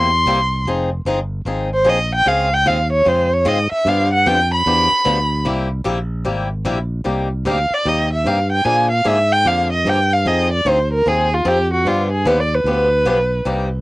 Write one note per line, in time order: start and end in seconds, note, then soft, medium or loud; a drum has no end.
0.00 0.24 E2 medium
0.00 0.67 C6 loud
0.26 0.65 C2 medium
0.26 0.38 C3 medium
0.26 0.38 G3 medium
0.26 0.38 A#3 medium
0.26 0.38 E4 medium
0.26 0.39 G4 medium
0.65 1.05 F1 medium
0.65 0.89 F3 medium
0.65 0.89 C4 medium
0.65 0.89 D#4 medium
0.65 0.89 G#4 medium
1.05 1.45 G1 medium
1.05 1.18 F3 medium
1.05 1.18 C4 medium
1.05 1.18 D#4 loud
1.05 1.19 G#4 medium
1.45 1.85 G#1 medium
1.45 1.68 F3 medium
1.45 1.68 C4 medium
1.45 1.69 D#4 medium
1.45 1.69 G#4 medium
1.74 1.90 C5 medium
1.84 2.25 A#1 medium
1.84 1.97 F3 medium
1.84 1.97 C4 medium
1.84 1.97 D#4 medium
1.84 1.98 G#4 medium
1.89 2.13 D#5 medium
2.15 2.29 G5 loud
2.25 2.65 C#2 medium
2.25 2.48 C#3 medium
2.25 2.48 G#3 medium
2.25 2.48 C4 medium
2.25 2.48 F4 medium
2.25 2.48 G#4 medium
2.25 2.55 F5 medium
2.54 2.69 G5 loud
2.66 3.05 D#2 medium
2.66 2.77 C#3 medium
2.66 2.78 G#3 medium
2.66 2.78 C4 medium
2.66 2.78 F4 loud
2.66 2.78 G#4 medium
2.66 2.92 F5 medium
2.93 3.10 C#5 medium
3.05 3.45 F2 medium
3.05 3.27 C#3 medium
3.05 3.28 G#3 medium
3.05 3.28 C4 medium
3.05 3.28 F4 medium
3.05 3.28 G#4 medium
3.05 3.35 C5 medium
3.34 3.49 C#5 medium
3.45 3.70 G#2 medium
3.45 3.57 C#3 medium
3.45 3.57 G#3 medium
3.45 3.58 C4 medium
3.45 3.58 F4 loud
3.45 3.58 G#4 medium
3.45 3.72 D#5 medium
3.72 3.90 E5 medium
3.72 muted fingered electric bass stroke soft
3.85 4.24 G2 medium
3.85 4.08 D3 medium
3.85 4.08 F3 medium
3.85 4.08 B3 medium
3.85 4.09 D4 medium
3.85 4.09 G4 medium
3.85 4.13 F5 medium
4.13 4.29 F#5 medium
4.26 4.65 F2 medium
4.26 4.38 D3 medium
4.26 4.38 F3 medium
4.26 4.38 B3 medium
4.26 4.38 D4 medium
4.26 4.38 G4 medium
4.26 4.52 G5 medium
4.54 5.43 B5 loud
4.66 4.90 E2 medium
4.66 4.88 D3 medium
4.66 4.88 F3 medium
4.66 4.88 B3 medium
4.66 4.88 D4 medium
4.66 4.89 G4 medium
4.92 muted fingered electric bass stroke soft
5.05 5.45 D2 loud
5.05 5.17 D3 medium
5.05 5.17 F3 medium
5.05 5.17 B3 medium
5.05 5.18 D4 medium
5.05 5.17 G4 loud
5.45 5.85 C2 loud
5.45 5.67 C3 medium
5.45 5.67 G3 medium
5.45 5.68 A#3 medium
5.45 5.68 E4 medium
5.45 5.68 G4 medium
5.84 6.24 A#1 loud
5.84 5.97 C3 medium
5.84 5.97 G3 medium
5.84 5.97 A#3 medium
5.84 5.98 E4 loud
5.84 5.98 G4 medium
6.25 6.64 G#1 medium
6.25 6.47 C3 medium
6.25 6.48 G3 medium
6.25 6.47 A#3 medium
6.25 6.47 E4 medium
6.25 6.48 G4 medium
6.65 7.04 A#1 loud
6.65 6.77 C3 medium
6.65 6.77 G3 medium
6.65 6.77 A#3 medium
6.65 6.78 E4 medium
6.65 6.77 G4 medium
7.04 7.45 C2 medium
7.04 7.27 C3 medium
7.04 7.27 G3 medium
7.04 7.27 A#3 medium
7.04 7.28 D#4 medium
7.04 7.28 G4 medium
7.45 7.70 D2 medium
7.45 7.57 C3 medium
7.45 7.58 G3 medium
7.45 7.58 A#3 medium
7.45 7.58 D#4 medium
7.45 7.58 G4 loud
7.45 7.75 F5 medium
7.70 7.90 D5 medium
7.70 muted fingered electric bass stroke soft
7.85 8.24 D#2 medium
7.85 8.07 C3 medium
7.85 8.08 G3 medium
7.85 8.08 A#3 medium
7.85 8.08 D#4 medium
7.85 8.08 G4 medium
7.85 8.12 D#5 medium
8.13 8.29 E5 medium
8.25 8.64 G2 medium
8.25 8.37 C3 medium
8.25 8.38 G3 medium
8.25 8.38 A#3 medium
8.25 8.38 D#4 medium
8.25 8.38 G4 medium
8.25 8.51 F5 medium
8.52 8.66 G5 medium
8.65 9.04 A#2 medium
8.65 8.87 D3 medium
8.65 8.87 F3 medium
8.65 8.87 A#3 medium
8.65 8.87 D4 medium
8.65 8.88 G#4 medium
8.65 8.91 G#5 medium
8.91 9.08 F5 medium
9.04 9.44 G#2 medium
9.04 9.17 D3 medium
9.04 9.17 F3 medium
9.04 9.17 A#3 medium
9.04 9.17 D4 medium
9.04 9.17 G#4 medium
9.04 9.33 E5 medium
9.32 9.49 G5 loud
9.45 9.84 F2 medium
9.45 9.67 D3 medium
9.45 9.68 F3 medium
9.45 9.68 A#3 medium
9.45 9.68 D4 medium
9.45 9.68 G#4 medium
9.45 9.72 F5 medium
9.73 9.90 D#5 medium
9.85 10.24 G2 medium
9.85 9.98 D3 medium
9.85 9.98 F3 medium
9.85 9.98 A#3 medium
9.85 9.98 D4 medium
9.85 9.98 G#4 medium
9.89 10.15 G5 medium
10.13 10.29 F5 medium
10.25 10.64 F2 medium
10.25 10.47 F3 medium
10.25 10.48 C4 medium
10.25 10.48 D#4 medium
10.25 10.48 G#4 medium
10.25 10.52 D#5 medium
10.53 10.70 D5 medium
10.65 11.04 D2 medium
10.65 10.77 F3 medium
10.65 10.77 C4 medium
10.65 10.78 D#4 medium
10.65 10.78 G#4 medium
10.69 10.93 C5 medium
10.93 11.09 A#4 medium
11.06 11.44 D#2 medium
11.06 11.28 F3 medium
11.06 11.28 C4 medium
11.06 11.28 D#4 medium
11.06 11.29 G#4 medium
11.06 11.35 G#4 medium
11.34 11.49 F4 medium
11.45 11.84 F2 loud
11.45 11.57 F3 medium
11.45 11.57 C4 medium
11.45 11.57 D#4 medium
11.45 11.72 G4 medium
11.45 11.57 G#4 medium
11.74 11.89 F#4 medium
11.85 12.24 G2 medium
11.85 12.08 D3 medium
11.85 12.08 F3 medium
11.85 12.08 B3 medium
11.85 12.08 D4 medium
11.85 12.11 F4 medium
11.85 12.08 G4 medium
12.12 12.28 G#4 medium
12.25 12.64 D#2 medium
12.25 12.37 D3 medium
12.25 12.37 F3 medium
12.25 12.38 B3 medium
12.25 12.38 D4 medium
12.25 12.38 G4 loud
12.25 12.42 B4 medium
12.40 12.56 D5 medium
12.55 13.56 B4 medium
12.64 13.04 D2 medium
12.64 12.88 D3 medium
12.64 12.88 F3 medium
12.64 12.88 B3 medium
12.64 12.88 D4 medium
12.64 12.89 G4 medium
13.05 13.44 B1 medium
13.05 13.17 D3 medium
13.05 13.17 F3 medium
13.05 13.17 B3 medium
13.05 13.18 D4 medium
13.05 13.18 G4 medium
13.45 13.81 C2 medium
13.45 13.67 C3 medium
13.45 13.68 G3 medium
13.45 13.68 A#3 medium
13.45 13.68 D#4 medium
13.45 13.68 G4 medium